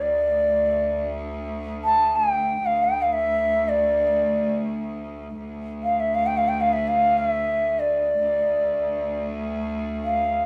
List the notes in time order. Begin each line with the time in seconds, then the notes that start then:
Already playing: D2
0.01 D5
1.84 A5
2.16 G5
2.62 D2 F5
2.84 G5
3.02 F5
3.13 E5
3.69 D5
5.39 D2
5.83 F5
6.00 E5
6.15 F5
6.26 G5
6.37 F5
6.48 G5
6.61 F5
6.73 E5
6.88 F5
7.18 E5
7.79 D5
8.19 D2
10.04 F5